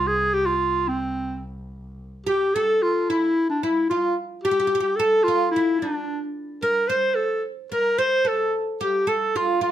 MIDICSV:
0, 0, Header, 1, 4, 480
1, 0, Start_track
1, 0, Tempo, 545455
1, 1748, Time_signature, 4, 2, 24, 8
1, 8550, End_track
2, 0, Start_track
2, 0, Title_t, "Clarinet"
2, 0, Program_c, 0, 71
2, 63, Note_on_c, 0, 68, 89
2, 295, Note_on_c, 0, 67, 91
2, 308, Note_off_c, 0, 68, 0
2, 403, Note_on_c, 0, 65, 82
2, 417, Note_off_c, 0, 67, 0
2, 777, Note_on_c, 0, 60, 77
2, 790, Note_off_c, 0, 65, 0
2, 1262, Note_off_c, 0, 60, 0
2, 1991, Note_on_c, 0, 67, 88
2, 2240, Note_on_c, 0, 69, 97
2, 2253, Note_off_c, 0, 67, 0
2, 2485, Note_on_c, 0, 65, 83
2, 2498, Note_off_c, 0, 69, 0
2, 2726, Note_on_c, 0, 64, 90
2, 2739, Note_off_c, 0, 65, 0
2, 3073, Note_off_c, 0, 64, 0
2, 3079, Note_on_c, 0, 62, 73
2, 3200, Note_on_c, 0, 64, 81
2, 3213, Note_off_c, 0, 62, 0
2, 3425, Note_off_c, 0, 64, 0
2, 3430, Note_on_c, 0, 65, 76
2, 3652, Note_off_c, 0, 65, 0
2, 3904, Note_on_c, 0, 67, 89
2, 4366, Note_on_c, 0, 69, 94
2, 4379, Note_off_c, 0, 67, 0
2, 4607, Note_on_c, 0, 65, 102
2, 4621, Note_off_c, 0, 69, 0
2, 4845, Note_off_c, 0, 65, 0
2, 4851, Note_on_c, 0, 64, 78
2, 5097, Note_on_c, 0, 62, 76
2, 5110, Note_off_c, 0, 64, 0
2, 5462, Note_off_c, 0, 62, 0
2, 5834, Note_on_c, 0, 70, 88
2, 6055, Note_on_c, 0, 72, 103
2, 6068, Note_off_c, 0, 70, 0
2, 6294, Note_on_c, 0, 69, 81
2, 6307, Note_off_c, 0, 72, 0
2, 6541, Note_off_c, 0, 69, 0
2, 6796, Note_on_c, 0, 70, 88
2, 7027, Note_on_c, 0, 72, 102
2, 7040, Note_off_c, 0, 70, 0
2, 7287, Note_on_c, 0, 69, 84
2, 7300, Note_off_c, 0, 72, 0
2, 7517, Note_off_c, 0, 69, 0
2, 7768, Note_on_c, 0, 67, 85
2, 7993, Note_on_c, 0, 69, 97
2, 8006, Note_off_c, 0, 67, 0
2, 8245, Note_on_c, 0, 65, 85
2, 8258, Note_off_c, 0, 69, 0
2, 8467, Note_off_c, 0, 65, 0
2, 8473, Note_on_c, 0, 65, 76
2, 8550, Note_off_c, 0, 65, 0
2, 8550, End_track
3, 0, Start_track
3, 0, Title_t, "Oud"
3, 0, Program_c, 1, 24
3, 1994, Note_on_c, 1, 67, 79
3, 2238, Note_off_c, 1, 67, 0
3, 2250, Note_on_c, 1, 69, 79
3, 2724, Note_off_c, 1, 69, 0
3, 2727, Note_on_c, 1, 64, 70
3, 3186, Note_off_c, 1, 64, 0
3, 3197, Note_on_c, 1, 64, 65
3, 3436, Note_off_c, 1, 64, 0
3, 3439, Note_on_c, 1, 65, 59
3, 3657, Note_off_c, 1, 65, 0
3, 3914, Note_on_c, 1, 67, 79
3, 3961, Note_off_c, 1, 67, 0
3, 3972, Note_on_c, 1, 67, 61
3, 4034, Note_off_c, 1, 67, 0
3, 4045, Note_on_c, 1, 67, 66
3, 4100, Note_off_c, 1, 67, 0
3, 4111, Note_on_c, 1, 67, 59
3, 4169, Note_off_c, 1, 67, 0
3, 4179, Note_on_c, 1, 67, 64
3, 4217, Note_off_c, 1, 67, 0
3, 4228, Note_on_c, 1, 67, 56
3, 4301, Note_off_c, 1, 67, 0
3, 4396, Note_on_c, 1, 69, 83
3, 4638, Note_off_c, 1, 69, 0
3, 4647, Note_on_c, 1, 65, 74
3, 4884, Note_off_c, 1, 65, 0
3, 4895, Note_on_c, 1, 64, 74
3, 5119, Note_off_c, 1, 64, 0
3, 5122, Note_on_c, 1, 62, 59
3, 5450, Note_off_c, 1, 62, 0
3, 5830, Note_on_c, 1, 70, 76
3, 6065, Note_off_c, 1, 70, 0
3, 6068, Note_on_c, 1, 72, 80
3, 6514, Note_off_c, 1, 72, 0
3, 6791, Note_on_c, 1, 70, 70
3, 7023, Note_off_c, 1, 70, 0
3, 7027, Note_on_c, 1, 72, 80
3, 7253, Note_off_c, 1, 72, 0
3, 7257, Note_on_c, 1, 69, 63
3, 7485, Note_off_c, 1, 69, 0
3, 7750, Note_on_c, 1, 67, 73
3, 7978, Note_off_c, 1, 67, 0
3, 7982, Note_on_c, 1, 69, 79
3, 8230, Note_off_c, 1, 69, 0
3, 8233, Note_on_c, 1, 65, 72
3, 8448, Note_off_c, 1, 65, 0
3, 8459, Note_on_c, 1, 65, 67
3, 8550, Note_off_c, 1, 65, 0
3, 8550, End_track
4, 0, Start_track
4, 0, Title_t, "Double bass"
4, 0, Program_c, 2, 43
4, 0, Note_on_c, 2, 36, 66
4, 1801, Note_off_c, 2, 36, 0
4, 8550, End_track
0, 0, End_of_file